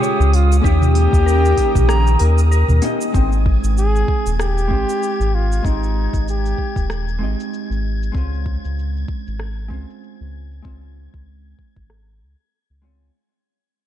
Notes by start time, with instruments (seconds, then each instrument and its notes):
Already playing: analog synth pad C#3 G#3 F4, hollow-body jazz guitar G#3 C#4 F4 C6, flugelhorn G4, synth texture D#6
0.02 clean electric guitar C#5, cabasa
0.20 analog synth bass C#2, cabasa
0.33 flugelhorn F4, open hi-hat
0.52 cabasa
0.60 hollow-body jazz guitar A#3 C#4, flugelhorn G#4
0.64 analog synth bass D#2, analog synth pad D#3 A#3 C#4 G4, hollow-body jazz guitar D#4 G4 C#5, clean electric guitar G4, flugelhorn G4, kick, cabasa
0.82 mid tom, cabasa
0.95 open hi-hat
1.13 analog synth bass D#2, kick, cabasa
1.26 clean electric guitar A#4, cabasa
1.45 cabasa
1.58 kick, open hi-hat
1.75 analog synth bass A#1, kick, mid tom, cabasa
1.88 clean electric guitar A#5, cross-stick, cabasa
2.07 cabasa
2.19 analog synth bass D#2, clean electric guitar A#4, open hi-hat
2.38 cabasa
2.52 clean electric guitar A#4, cabasa
2.68 analog synth bass D#2, mid tom, cabasa
2.82 hollow-body jazz guitar A#3 C#4 D#4 G4 D#5, open hi-hat
3.01 cabasa
3.12 analog synth bass G#1, hollow-body jazz guitar G#3 C4 D#4 G5, synth texture G#6, kick, cabasa
3.17 hollow-body jazz guitar C5
3.32 cabasa
3.46 kick
3.64 analog synth bass G#1, cabasa
3.78 flugelhorn G#4, cabasa
3.96 cabasa
4.08 kick
4.26 analog synth bass D#1, cabasa
4.40 flugelhorn G4, cross-stick, cabasa
4.58 cabasa
4.68 analog synth bass G#1, hollow-body jazz guitar G#3 C4 D#4 G4, kick
4.73 hollow-body jazz guitar C5
4.89 cabasa
5.03 cabasa
5.20 analog synth bass G#1, cabasa
5.35 flugelhorn F4
5.52 cabasa
5.63 analog synth bass G#1, hollow-body jazz guitar G#3 C4 D#4 G4, flugelhorn D#4, kick, cabasa
5.68 hollow-body jazz guitar C5
5.83 cabasa
6.14 analog synth bass G#1, kick, cabasa
6.28 flugelhorn G4, cabasa
6.46 cabasa
6.58 kick
6.76 analog synth bass D#1, kick, cabasa
6.90 cross-stick, cabasa
7.08 cabasa
7.19 analog synth bass G#1, hollow-body jazz guitar G#3 C4 D#4 G4
7.24 hollow-body jazz guitar D#5
7.40 cabasa
7.54 cabasa
7.70 analog synth bass G#1, cabasa
8.03 cabasa
8.12 analog synth bass C#2, hollow-body jazz guitar G#3 C4 C#4, kick
8.16 hollow-body jazz guitar F4 C5, cabasa
8.34 cabasa
8.46 kick
8.65 analog synth bass C#2, cabasa
8.79 cabasa
8.97 cabasa
9.08 kick
9.27 analog synth bass G#1, cabasa
9.40 cross-stick, cabasa
9.58 cabasa
9.68 analog synth bass C#2, hollow-body jazz guitar G#3 C4 C#4 F4, kick
9.74 hollow-body jazz guitar C5
9.90 cabasa
10.04 cabasa
10.21 analog synth bass C#2, cabasa
10.52 cabasa
10.62 analog synth bass C#2, hollow-body jazz guitar G#3 C4 C#4 F4, kick, cabasa
10.67 hollow-body jazz guitar C5
10.83 cabasa
11.14 analog synth bass C#2, kick
11.59 kick
11.76 analog synth bass G#1, kick
11.90 cross-stick
12.22 analog synth bass C#2
12.70 analog synth bass C#2
12.82 hollow-body jazz guitar G#3 C4 C#4 F4 C#5